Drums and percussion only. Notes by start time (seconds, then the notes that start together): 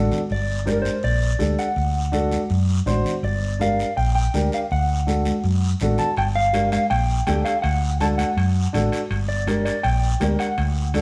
0.11 low conga, short guiro
0.30 long guiro
0.67 high conga, short guiro
0.85 high conga, short guiro
1.03 long guiro
1.40 high conga, short guiro
1.59 short guiro
1.76 long guiro
2.13 high conga, short guiro
2.31 high conga, short guiro
2.50 long guiro
2.86 high conga, low conga, short guiro
3.04 low conga, short guiro
3.24 long guiro
3.61 high conga, short guiro
3.79 short guiro
3.98 long guiro
4.34 high conga, short guiro
4.52 short guiro
4.71 long guiro
5.07 high conga, short guiro
5.25 high conga, short guiro
5.44 long guiro
5.80 high conga, low conga, short guiro
5.98 low conga, short guiro
6.17 high timbale, long guiro
6.54 high conga, high timbale, short guiro
6.72 high conga, high timbale, short guiro
6.91 high timbale, long guiro
7.27 high conga, high timbale, low timbale, short guiro
7.46 high timbale, short guiro
7.64 high timbale, long guiro
8.00 high conga, high timbale, short guiro
8.19 high conga, high timbale, short guiro
8.38 high timbale, long guiro
8.74 high conga, low conga, high timbale, short guiro
8.92 high timbale, short guiro
9.11 high timbale, long guiro
9.47 high conga, high timbale, short guiro
9.66 high timbale, short guiro
9.84 high timbale, long guiro
10.21 high conga, high timbale, low timbale, short guiro
10.39 high timbale, short guiro
10.58 high timbale, long guiro
10.94 high conga, high timbale, short guiro